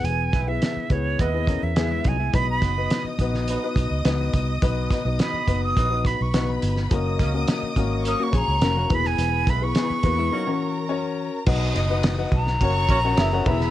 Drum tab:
CC |----------------|----------------|----------------|----------------|
RD |----------------|----------------|----------------|----------------|
HH |x-x-x-x-x-x-x-x-|x-x-x-x-x-x-x-x-|x-x-x-x-x-x-x-x-|x-x-x-x-x-x-x-x-|
SD |--o-o-------o---|--o-o--o----o---|--o-o-------o--o|--o-o-------o--o|
BD |--o---o-o-o---o-|o-o---o---o---o-|o-o---o-o-o-----|o-o---o---o---o-|

CC |----------------|x---------------|
RD |----------------|--x-x-x-x-x-x-x-|
HH |x-x-x-x---------|----------------|
SD |----o-----------|--o-o--o----o--o|
BD |--o---o---------|o-----o-o-o---o-|